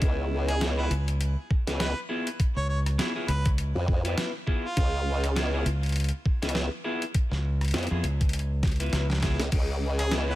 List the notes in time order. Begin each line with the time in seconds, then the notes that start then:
Already playing: B3 E4 F4 G#4
0.02 C#2, kick, closed hi-hat
0.49 G#4, cross-stick, closed hi-hat
0.61 B3 E4 F4 G#4, snare, closed hi-hat
0.78 B3 E4 F4 G#4 B4
0.91 C#2, closed hi-hat
1.08 closed hi-hat
1.21 closed hi-hat
1.51 kick
1.67 C#2 B3 E4 F4 B4, snare, closed hi-hat
1.80 B4, snare, closed hi-hat
2.09 B3 E4 F4 G#4
2.27 closed hi-hat
2.40 kick, closed hi-hat
2.56 C#2 C#5
2.69 C#5
2.86 cross-stick, closed hi-hat
2.98 B3 E4 F4 G#4, snare, closed hi-hat
3.15 B3 E4 F4 G#4
3.28 C#2 B4, closed hi-hat
3.46 kick, closed hi-hat
3.58 closed hi-hat
3.75 F2
3.88 kick
4.05 B3 E4 F4 B4, closed hi-hat
4.18 snare, closed hi-hat
4.47 B3 E4 F4 G#4, kick
4.64 F4
4.77 C#2, kick, closed hi-hat
5.24 cross-stick, closed hi-hat
5.36 B3 E4 F4 G#4, snare, closed hi-hat
5.53 B3 E4 F4 G#4
5.66 C#2, closed hi-hat
5.83 closed hi-hat
5.86 closed hi-hat
5.89 closed hi-hat
5.92 closed hi-hat
5.96 closed hi-hat
6.00 closed hi-hat
6.04 closed hi-hat
6.09 closed hi-hat
6.26 kick
6.42 C#2 B3 E4 F4 B4, snare, closed hi-hat
6.49 closed hi-hat
6.55 snare
6.84 B3 E4 F4 G#4
7.02 closed hi-hat
7.14 kick, closed hi-hat
7.31 C#2, snare
7.61 cross-stick, closed hi-hat
7.65 closed hi-hat
7.68 closed hi-hat
7.71 F2 B3, snare, closed hi-hat
7.74 E4 F4 G#4, closed hi-hat
7.78 closed hi-hat
7.83 closed hi-hat
7.87 E4, closed hi-hat
7.91 F2 B3 F4 G#4
8.03 C#2, closed hi-hat
8.21 kick, closed hi-hat
8.29 closed hi-hat
8.33 closed hi-hat
8.39 closed hi-hat
8.63 kick, snare, closed hi-hat
8.68 closed hi-hat
8.72 closed hi-hat
8.76 E4, closed hi-hat
8.80 B3 F4 B4, closed hi-hat
8.83 closed hi-hat
8.86 closed hi-hat
8.90 C#2, snare, closed hi-hat
8.93 closed hi-hat
9.10 snare
9.13 snare
9.18 E4, snare
9.23 B3 F4 G#4, kick, snare, closed hi-hat
9.28 snare
9.32 snare
9.39 C#2, snare, closed hi-hat
9.52 C#2, kick, closed hi-hat, crash
9.99 G#4, cross-stick, closed hi-hat
10.11 B3 E4 F4 G#4, snare, closed hi-hat
10.28 B3 E4 F4 G#4 B4